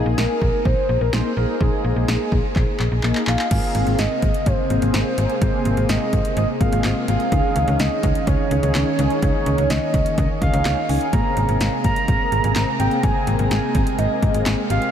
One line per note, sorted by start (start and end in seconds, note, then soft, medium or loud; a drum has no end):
0.00 0.45 A#3 medium
0.00 0.45 D#4 medium
0.00 0.45 G#4 loud
0.06 0.15 A#1 loud
0.18 0.26 A#1 loud
0.18 0.67 A#4 loud
0.18 snare loud
0.42 0.50 A#1 loud
0.42 kick medium
0.65 0.74 A#1 loud
0.65 1.02 C5 loud
0.65 kick medium
0.89 0.98 A#1 loud
1.01 1.10 A#1 medium
1.01 1.12 A#4 medium
1.13 1.22 A#1 loud
1.13 1.32 A#3 medium
1.13 1.32 D#4 medium
1.13 1.32 G#4 medium
1.13 1.35 C5 loud
1.13 snare loud
1.37 1.45 A#1 loud
1.37 1.55 A#3 medium
1.37 1.55 D#4 medium
1.37 1.55 G#4 medium
1.37 1.62 A#4 loud
1.61 1.69 A#1 loud
1.61 2.35 A#3 medium
1.61 2.35 D#4 medium
1.61 3.03 G#4 loud
1.61 2.35 G#4 medium
1.61 kick loud
1.84 1.93 A#1 loud
1.96 2.05 A#1 medium
2.08 2.17 A#1 loud
2.08 snare loud
2.32 2.41 A#1 medium
2.32 kick medium
2.56 2.64 A#1 loud
2.56 kick medium
2.56 clap medium
2.80 2.88 A#1 loud
2.80 clap medium
2.92 3.00 A#1 medium
3.03 3.12 A#1 loud
3.03 3.22 A#3 medium
3.03 3.22 D#4 medium
3.03 3.22 G#4 medium
3.03 clap medium
3.15 clap medium
3.27 3.36 A#1 loud
3.27 3.46 A#3 medium
3.27 3.46 D#4 medium
3.27 3.46 G#4 medium
3.27 4.00 F5 loud
3.27 clap loud
3.39 clap medium
3.51 3.60 G#1 loud
3.51 7.28 C3 medium
3.51 9.19 G#3 medium
3.51 7.28 A#3 medium
3.51 4.26 A#3 medium
3.51 4.26 C4 medium
3.51 4.26 G#4 medium
3.51 kick loud
3.51 closed hi-hat medium
3.51 crash medium
3.75 3.84 G#1 loud
3.75 closed hi-hat medium
3.87 3.95 G#1 medium
3.87 closed hi-hat soft
3.99 4.07 G#1 loud
3.99 4.48 D#5 medium
3.99 snare loud
3.99 closed hi-hat medium
4.22 4.31 G#1 loud
4.22 kick medium
4.22 closed hi-hat medium
4.34 closed hi-hat soft
4.46 4.55 G#1 loud
4.46 5.41 C5 medium
4.46 kick medium
4.46 closed hi-hat medium
4.70 4.79 G#1 loud
4.70 5.07 A#3 medium
4.70 5.07 C4 medium
4.70 5.07 G#4 medium
4.70 closed hi-hat medium
4.82 4.91 G#1 loud
4.82 closed hi-hat medium
4.94 5.03 G#1 loud
4.94 snare loud
4.94 closed hi-hat medium
5.18 5.26 G#1 loud
5.18 5.36 A#3 medium
5.18 5.36 C4 medium
5.18 5.36 G#4 medium
5.18 closed hi-hat medium
5.30 closed hi-hat soft
5.42 5.50 G#1 loud
5.42 6.16 A#3 medium
5.42 6.16 C4 medium
5.42 6.16 G#4 medium
5.42 5.91 C5 loud
5.42 kick loud
5.42 closed hi-hat medium
5.65 5.74 G#1 medium
5.65 closed hi-hat medium
5.77 5.86 G#1 medium
5.77 closed hi-hat soft
5.89 5.98 G#1 medium
5.89 6.36 D#5 loud
5.89 snare loud
5.89 closed hi-hat medium
6.13 6.22 G#1 loud
6.13 kick medium
6.13 closed hi-hat medium
6.25 closed hi-hat medium
6.37 6.45 G#1 loud
6.37 6.48 D#5 loud
6.37 closed hi-hat medium
6.60 6.69 G#1 medium
6.60 6.98 A#3 medium
6.60 6.98 C4 medium
6.60 6.98 G#4 medium
6.60 7.05 F5 loud
6.60 kick medium
6.60 closed hi-hat medium
6.72 6.81 G#1 loud
6.72 closed hi-hat medium
6.84 6.93 G#1 loud
6.84 snare loud
6.84 clap medium
6.84 closed hi-hat medium
7.08 7.17 G#1 loud
7.08 7.27 A#3 medium
7.08 7.27 C4 medium
7.08 7.27 G#4 medium
7.08 7.81 F5 loud
7.08 closed hi-hat medium
7.20 closed hi-hat soft
7.32 7.41 C#2 loud
7.32 11.09 D#3 medium
7.32 8.07 C#4 medium
7.32 11.09 C#4 medium
7.32 8.07 D#4 medium
7.32 8.07 G#4 medium
7.32 kick loud
7.32 closed hi-hat medium
7.56 7.64 C#2 medium
7.56 closed hi-hat medium
7.68 7.76 C#2 loud
7.68 closed hi-hat soft
7.80 7.88 C#2 loud
7.80 8.29 D#5 loud
7.80 snare loud
7.80 closed hi-hat medium
8.03 8.12 C#2 loud
8.03 kick medium
8.03 closed hi-hat medium
8.15 closed hi-hat medium
8.27 8.36 C#2 loud
8.27 9.22 C#5 loud
8.27 kick medium
8.27 closed hi-hat medium
8.51 8.60 C#2 loud
8.51 8.88 C#4 medium
8.51 8.88 D#4 medium
8.51 8.88 G#4 medium
8.51 closed hi-hat medium
8.63 8.72 C#2 loud
8.63 closed hi-hat medium
8.75 8.84 C#2 loud
8.75 snare loud
8.75 clap medium
8.75 closed hi-hat medium
8.99 9.07 C#2 loud
8.99 9.17 C#4 medium
8.99 9.17 D#4 medium
8.99 9.17 G#4 medium
8.99 closed hi-hat medium
9.10 closed hi-hat soft
9.22 9.31 C#2 loud
9.22 14.91 A#3 medium
9.22 9.97 C#4 medium
9.22 9.97 D#4 medium
9.22 9.97 G#4 medium
9.22 9.72 C#5 loud
9.22 kick loud
9.22 closed hi-hat medium
9.46 9.55 C#2 loud
9.46 closed hi-hat medium
9.58 9.67 C#2 loud
9.58 closed hi-hat soft
9.70 9.79 C#2 loud
9.70 10.17 D#5 loud
9.70 snare loud
9.70 closed hi-hat medium
9.94 10.03 C#2 loud
9.94 kick medium
9.94 closed hi-hat medium
10.06 closed hi-hat medium
10.18 10.26 C#2 loud
10.18 10.28 D#5 loud
10.18 kick medium
10.18 closed hi-hat medium
10.42 10.50 C#2 loud
10.42 10.79 C#4 medium
10.42 10.79 D#4 medium
10.42 10.79 G#4 medium
10.42 10.91 F5 loud
10.42 kick medium
10.42 closed hi-hat medium
10.53 10.62 C#2 loud
10.53 closed hi-hat medium
10.65 10.74 C#2 loud
10.65 snare loud
10.65 clap medium
10.65 closed hi-hat medium
10.89 10.98 C#2 medium
10.89 11.08 C#4 medium
10.89 11.08 D#4 medium
10.89 11.08 G#4 medium
10.89 11.12 G#5 loud
10.89 open hi-hat medium
11.01 closed hi-hat soft
11.13 11.22 G#1 loud
11.13 14.90 C3 medium
11.13 14.91 G#3 medium
11.13 11.88 A#3 medium
11.13 11.88 C4 medium
11.13 11.88 G#4 medium
11.13 11.57 A#5 loud
11.13 kick loud
11.13 closed hi-hat medium
11.37 11.45 G#1 loud
11.37 closed hi-hat medium
11.49 11.57 G#1 medium
11.49 closed hi-hat soft
11.61 11.69 G#1 loud
11.61 snare loud
11.61 closed hi-hat medium
11.84 11.93 G#1 medium
11.84 12.76 A#5 loud
11.84 kick medium
11.84 closed hi-hat medium
11.96 closed hi-hat medium
12.08 12.17 G#1 loud
12.08 kick medium
12.08 closed hi-hat medium
12.32 12.41 G#1 loud
12.32 12.69 A#3 medium
12.32 12.69 C4 medium
12.32 12.69 G#4 medium
12.32 closed hi-hat medium
12.44 12.53 G#1 loud
12.44 closed hi-hat medium
12.56 12.64 G#1 loud
12.56 snare loud
12.56 clap medium
12.56 closed hi-hat medium
12.79 12.88 G#1 loud
12.79 12.98 A#3 medium
12.79 12.98 C4 medium
12.79 12.98 G#4 medium
12.79 13.02 G5 loud
12.79 closed hi-hat medium
12.91 closed hi-hat soft
13.03 13.12 G#1 loud
13.03 13.78 A#3 medium
13.03 13.78 C4 medium
13.03 13.78 G#4 medium
13.03 13.48 G#5 loud
13.03 kick loud
13.03 closed hi-hat medium
13.27 13.36 G#1 loud
13.27 closed hi-hat medium
13.39 13.48 G#1 loud
13.39 closed hi-hat soft
13.51 13.60 G#1 loud
13.51 14.00 G#5 loud
13.51 snare loud
13.51 closed hi-hat medium
13.75 13.84 G#1 loud
13.75 kick medium
13.75 closed hi-hat medium
13.87 closed hi-hat medium
13.99 14.07 G#1 loud
13.99 14.46 D#5 medium
13.99 closed hi-hat medium
14.22 14.31 G#1 loud
14.22 14.60 A#3 medium
14.22 14.60 C4 medium
14.22 14.60 G#4 medium
14.22 kick medium
14.22 closed hi-hat medium
14.34 14.43 G#1 medium
14.34 closed hi-hat medium
14.46 14.55 G#1 loud
14.46 snare loud
14.46 clap medium
14.46 closed hi-hat medium
14.70 14.79 G#1 loud
14.70 14.89 A#3 medium
14.70 14.89 C4 medium
14.70 14.89 G4 medium
14.70 14.91 F5 loud
14.70 closed hi-hat medium
14.82 closed hi-hat soft